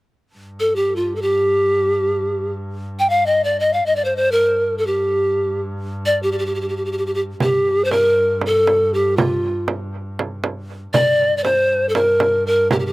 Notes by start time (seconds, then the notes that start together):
0.35 G2
0.60 A4
0.76 G4
0.96 F4
1.16 A4
1.22 G4
2.99 G5
3.10 F5
3.26 D#5
3.44 D5
3.60 D#5
3.73 F5
3.86 G2 D#5
3.96 D5
4.05 C5
4.16 C5
4.32 A#4
4.78 A4
4.87 G4
6.06 D5
6.23 G4
6.32 G4
6.39 G4
6.46 G4
6.55 G4
6.61 G4
6.69 G4
6.77 G4
6.85 G4
6.92 G4
6.98 G4
7.06 G4
7.14 G4
7.40 G2 G4, frame drum
7.85 C5
7.91 A#4, frame drum
8.41 frame drum
8.46 A4
8.67 frame drum
8.94 G4
9.17 F4, frame drum
9.68 frame drum
10.19 frame drum
10.44 frame drum
10.93 G2 D5, frame drum
11.37 D5
11.44 C5, frame drum
11.89 A4
11.95 A#4, frame drum
12.20 frame drum
12.47 A#4
12.71 G4, frame drum
12.79 G4
12.86 G4